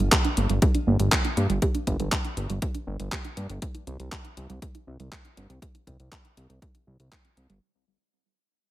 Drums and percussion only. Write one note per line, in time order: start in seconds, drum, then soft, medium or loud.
0.12 kick loud
0.12 clap loud
0.12 closed hi-hat medium
0.25 closed hi-hat soft
0.37 closed hi-hat medium
0.50 closed hi-hat soft
0.62 kick loud
0.62 closed hi-hat medium
0.75 closed hi-hat soft
1.00 closed hi-hat soft
1.12 kick loud
1.12 clap loud
1.12 closed hi-hat medium
1.25 closed hi-hat soft
1.37 closed hi-hat medium
1.50 closed hi-hat soft
1.62 kick loud
1.62 closed hi-hat medium
1.75 closed hi-hat soft
1.87 kick medium
1.87 closed hi-hat medium
2.00 closed hi-hat soft
2.12 kick loud
2.12 clap loud
2.12 closed hi-hat medium
2.25 closed hi-hat soft
2.37 closed hi-hat medium
2.50 closed hi-hat soft
2.62 kick loud
2.62 closed hi-hat medium
2.75 closed hi-hat soft
3.00 closed hi-hat soft
3.12 kick loud
3.12 clap loud
3.12 closed hi-hat medium
3.25 closed hi-hat soft
3.37 closed hi-hat medium
3.50 closed hi-hat soft
3.62 kick loud
3.62 closed hi-hat medium
3.75 closed hi-hat soft
3.87 closed hi-hat medium
4.00 closed hi-hat soft
4.12 kick loud
4.12 clap loud
4.12 closed hi-hat medium
4.25 closed hi-hat soft
4.37 closed hi-hat medium
4.50 closed hi-hat soft
4.62 kick loud
4.62 closed hi-hat medium
4.75 closed hi-hat soft
5.00 closed hi-hat soft
5.12 kick loud
5.12 clap loud
5.12 closed hi-hat medium
5.25 closed hi-hat soft
5.37 closed hi-hat medium
5.50 closed hi-hat soft
5.62 kick loud
5.62 closed hi-hat medium
5.75 closed hi-hat soft
5.87 kick medium
5.87 closed hi-hat medium
6.00 closed hi-hat soft
6.12 kick loud
6.12 clap loud
6.12 closed hi-hat medium
6.25 closed hi-hat soft
6.37 closed hi-hat medium
6.50 closed hi-hat soft
6.62 kick loud
6.62 closed hi-hat medium
6.75 closed hi-hat soft
7.00 closed hi-hat soft
7.12 kick loud
7.12 clap loud
7.12 closed hi-hat medium
7.25 closed hi-hat soft
7.37 closed hi-hat medium
7.50 closed hi-hat soft